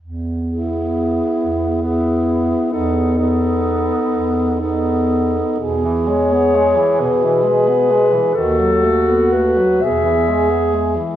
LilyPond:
<<
  \new Staff \with { instrumentName = "Clarinet" } { \time 6/8 \key e \major \tempo 4. = 43 r8 gis'4. gis'4 | a'8 a'4. a'4 | r8 cis''4 b'4. | a'4 b'8 e''4. | }
  \new Staff \with { instrumentName = "Alto saxophone" } { \time 6/8 \key e \major r8 e'4. e'4 | dis'8 dis'4. dis'4 | gis'2. | fis'4. gis'4. | }
  \new Staff \with { instrumentName = "Tenor saxophone" } { \clef bass \time 6/8 \key e \major r8 b4. b4 | b8 b4. b4 | b,16 e16 gis16 b16 gis16 e16 b,16 e16 gis16 b16 gis16 e16 | dis16 fis16 a16 b16 a16 fis16 b,16 e16 gis16 b16 gis16 e16 | }
  \new Staff \with { instrumentName = "Bass clarinet" } { \clef bass \time 6/8 \key e \major e,4. e,4. | e,4. e,4. | e,4. b,4. | dis,4. e,4. | }
>>